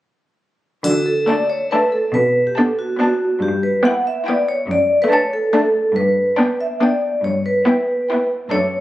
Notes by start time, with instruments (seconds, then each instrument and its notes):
0.84 cello section D3, vibraphone F#4, triangle
1.06 vibraphone A4
1.27 viola section A3, violin section D4 A5, vibraphone D5
1.50 vibraphone C#5
1.71 viola section A3, violin section D4 A5, vibraphone B4
1.92 vibraphone A4
2.14 cello section B2, vibraphone B4
2.47 vibraphone G4
2.57 viola section B3, violin section D4 A5, vibraphone A4
2.79 vibraphone F#4
2.99 viola section B3, violin section D4 A5, vibraphone F#4
3.42 cello section G2, vibraphone G4
3.63 vibraphone B4
3.85 viola section B3, violin section E4 G5, vibraphone F#5
4.07 vibraphone E5
4.25 viola section B3, violin section E4 G5, vibraphone D5
4.49 vibraphone C#5
4.70 cello section F#2, vibraphone D5
5.02 vibraphone B4
5.11 viola section A3, violin section D4 A5, vibraphone C#5
5.33 vibraphone A4
5.53 viola section A3, violin section D4 A5, vibraphone A4
5.95 cello section G2, vibraphone B4
6.37 viola section B3, violin section D4 G5
6.61 vibraphone E5
6.80 viola section B3, violin section D4 G5, vibraphone D5
7.24 cello section G2, vibraphone C#5
7.46 vibraphone B4
7.65 viola section B3, violin section E4 G5
8.09 viola section B3, violin section E4 G5
8.51 cello section F#2, viola section A3, violin section D4 A5, vibraphone C#5